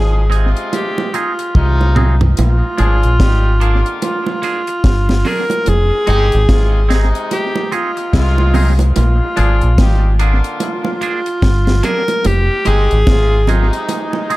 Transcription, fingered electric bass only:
0, 0, Header, 1, 2, 480
1, 0, Start_track
1, 0, Tempo, 822820
1, 1383, Time_signature, 4, 2, 24, 8
1, 8382, End_track
2, 0, Start_track
2, 0, Title_t, "Fingered electric bass"
2, 0, Program_c, 0, 33
2, 0, Note_on_c, 0, 32, 87
2, 307, Note_off_c, 0, 32, 0
2, 910, Note_on_c, 0, 36, 101
2, 1363, Note_off_c, 0, 36, 0
2, 1393, Note_on_c, 0, 34, 94
2, 1522, Note_off_c, 0, 34, 0
2, 1632, Note_on_c, 0, 32, 85
2, 1762, Note_off_c, 0, 32, 0
2, 1778, Note_on_c, 0, 34, 86
2, 1862, Note_off_c, 0, 34, 0
2, 1870, Note_on_c, 0, 32, 102
2, 2228, Note_off_c, 0, 32, 0
2, 2829, Note_on_c, 0, 31, 102
2, 3049, Note_off_c, 0, 31, 0
2, 3313, Note_on_c, 0, 29, 94
2, 3443, Note_off_c, 0, 29, 0
2, 3550, Note_on_c, 0, 31, 99
2, 3681, Note_off_c, 0, 31, 0
2, 3700, Note_on_c, 0, 32, 98
2, 3783, Note_off_c, 0, 32, 0
2, 3791, Note_on_c, 0, 32, 94
2, 4149, Note_off_c, 0, 32, 0
2, 4749, Note_on_c, 0, 36, 105
2, 5204, Note_off_c, 0, 36, 0
2, 5233, Note_on_c, 0, 34, 100
2, 5363, Note_off_c, 0, 34, 0
2, 5475, Note_on_c, 0, 32, 84
2, 5604, Note_off_c, 0, 32, 0
2, 5617, Note_on_c, 0, 34, 91
2, 5702, Note_off_c, 0, 34, 0
2, 5710, Note_on_c, 0, 32, 103
2, 6069, Note_off_c, 0, 32, 0
2, 6668, Note_on_c, 0, 31, 104
2, 6889, Note_off_c, 0, 31, 0
2, 7151, Note_on_c, 0, 29, 99
2, 7282, Note_off_c, 0, 29, 0
2, 7392, Note_on_c, 0, 31, 93
2, 7522, Note_off_c, 0, 31, 0
2, 7538, Note_on_c, 0, 32, 98
2, 7622, Note_off_c, 0, 32, 0
2, 7630, Note_on_c, 0, 32, 88
2, 7988, Note_off_c, 0, 32, 0
2, 8382, End_track
0, 0, End_of_file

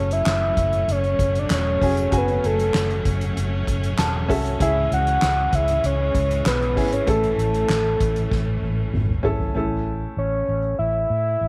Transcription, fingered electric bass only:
0, 0, Header, 1, 2, 480
1, 0, Start_track
1, 0, Key_signature, 3, "major"
1, 0, Tempo, 619195
1, 1643, Time_signature, 4, 2, 24, 8
1, 8900, End_track
2, 0, Start_track
2, 0, Title_t, "Fingered electric bass"
2, 0, Program_c, 0, 33
2, 0, Note_on_c, 0, 30, 90
2, 161, Note_off_c, 0, 30, 0
2, 203, Note_on_c, 0, 30, 75
2, 400, Note_off_c, 0, 30, 0
2, 445, Note_on_c, 0, 30, 81
2, 641, Note_off_c, 0, 30, 0
2, 680, Note_on_c, 0, 30, 97
2, 878, Note_off_c, 0, 30, 0
2, 923, Note_on_c, 0, 30, 80
2, 1120, Note_off_c, 0, 30, 0
2, 1164, Note_on_c, 0, 28, 81
2, 1361, Note_off_c, 0, 28, 0
2, 1408, Note_on_c, 0, 29, 82
2, 1603, Note_off_c, 0, 29, 0
2, 1646, Note_on_c, 0, 30, 102
2, 1842, Note_off_c, 0, 30, 0
2, 1892, Note_on_c, 0, 30, 86
2, 2085, Note_off_c, 0, 30, 0
2, 2132, Note_on_c, 0, 30, 83
2, 2325, Note_off_c, 0, 30, 0
2, 2368, Note_on_c, 0, 30, 82
2, 2563, Note_off_c, 0, 30, 0
2, 2611, Note_on_c, 0, 30, 101
2, 2805, Note_off_c, 0, 30, 0
2, 2845, Note_on_c, 0, 30, 82
2, 3041, Note_off_c, 0, 30, 0
2, 3088, Note_on_c, 0, 28, 68
2, 3330, Note_off_c, 0, 28, 0
2, 3330, Note_on_c, 0, 36, 82
2, 3524, Note_off_c, 0, 36, 0
2, 3568, Note_on_c, 0, 37, 110
2, 3763, Note_off_c, 0, 37, 0
2, 3810, Note_on_c, 0, 37, 104
2, 4004, Note_off_c, 0, 37, 0
2, 4050, Note_on_c, 0, 37, 84
2, 4244, Note_off_c, 0, 37, 0
2, 4285, Note_on_c, 0, 37, 83
2, 4481, Note_off_c, 0, 37, 0
2, 4528, Note_on_c, 0, 37, 102
2, 4722, Note_off_c, 0, 37, 0
2, 4767, Note_on_c, 0, 37, 88
2, 4962, Note_off_c, 0, 37, 0
2, 5007, Note_on_c, 0, 35, 67
2, 5250, Note_off_c, 0, 35, 0
2, 5250, Note_on_c, 0, 32, 91
2, 5444, Note_off_c, 0, 32, 0
2, 5483, Note_on_c, 0, 33, 97
2, 5679, Note_off_c, 0, 33, 0
2, 5722, Note_on_c, 0, 33, 97
2, 5918, Note_off_c, 0, 33, 0
2, 5964, Note_on_c, 0, 33, 81
2, 6160, Note_off_c, 0, 33, 0
2, 6206, Note_on_c, 0, 33, 75
2, 6401, Note_off_c, 0, 33, 0
2, 6446, Note_on_c, 0, 33, 90
2, 6641, Note_off_c, 0, 33, 0
2, 6682, Note_on_c, 0, 33, 84
2, 6879, Note_off_c, 0, 33, 0
2, 6924, Note_on_c, 0, 32, 71
2, 7120, Note_off_c, 0, 32, 0
2, 7167, Note_on_c, 0, 32, 78
2, 7362, Note_off_c, 0, 32, 0
2, 7408, Note_on_c, 0, 33, 84
2, 7799, Note_off_c, 0, 33, 0
2, 7883, Note_on_c, 0, 33, 73
2, 8079, Note_off_c, 0, 33, 0
2, 8128, Note_on_c, 0, 33, 66
2, 8322, Note_off_c, 0, 33, 0
2, 8365, Note_on_c, 0, 33, 77
2, 8561, Note_off_c, 0, 33, 0
2, 8605, Note_on_c, 0, 45, 77
2, 8801, Note_off_c, 0, 45, 0
2, 8846, Note_on_c, 0, 33, 70
2, 8900, Note_off_c, 0, 33, 0
2, 8900, End_track
0, 0, End_of_file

